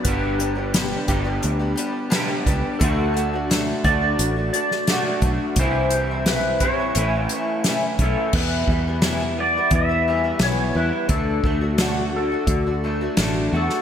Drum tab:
CC |----------------|----------------|----------------|x---------------|
HH |x-x-x-x-x-x-x-x-|x-x-x-x-x-x-x-x-|x-x-x-x-x-x-x-x-|----x---x---x---|
SD |----o-------o---|----o------oo---|----o-------o---|----o-------o---|
BD |o-----o-------o-|o-----o-------o-|o-----o-------o-|o-o-----o-------|

CC |----------------|
HH |x---x---x---x---|
SD |----o-------o--o|
BD |o-o-----o-------|